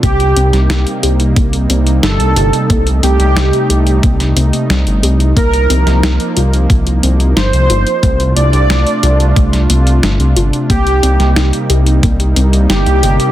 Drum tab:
HH |xxxxxxxxxxxxxxxx|xxxxxxxxxxxxxxxx|xxxxxxxxxxxxxxxx|xxxxxxxxxxxxxxxx|
SD |---oo-------o---|----o----o--o---|---oo-------o---|----o----o--o---|
BD |o-------o-------|o-------o-------|o-------o-------|o-------o-------|

HH |xxxxxxxxxxxxxxxx|
SD |---oo-------o---|
BD |o-------o-------|